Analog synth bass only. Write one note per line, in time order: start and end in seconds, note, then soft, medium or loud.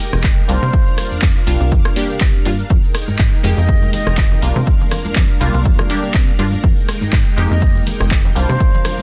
0.13 0.43 F1 medium
0.49 0.58 C2 medium
0.63 0.70 C3 loud
1.12 1.20 F2 soft
1.23 1.31 F2 medium
1.47 1.56 C2 medium
1.61 1.71 C2 medium
1.72 1.81 F2 loud
2.10 2.19 C3 soft
2.21 2.38 C3 medium
2.46 2.63 G2 medium
2.70 2.79 F2 loud
3.08 3.17 G#2 soft
3.19 3.28 G#2 medium
3.44 3.53 F2 loud
3.58 3.87 F2 loud
4.07 4.36 F1 medium
4.42 4.51 C2 loud
4.56 4.63 C3 loud
5.05 5.14 F2 soft
5.16 5.25 F2 medium
5.41 5.50 C2 loud
5.54 5.65 C2 loud
5.65 5.74 F2 loud
6.03 6.12 C3 soft
6.14 6.31 C3 medium
6.39 6.56 G2 medium
6.64 6.72 F2 loud
7.02 7.11 G#2 soft
7.13 7.22 G#2 medium
7.38 7.46 F2 medium
7.51 7.81 F2 medium
8.00 8.30 F1 medium
8.36 8.45 C2 loud
8.49 8.57 C3 loud
8.99 9.02 F2 soft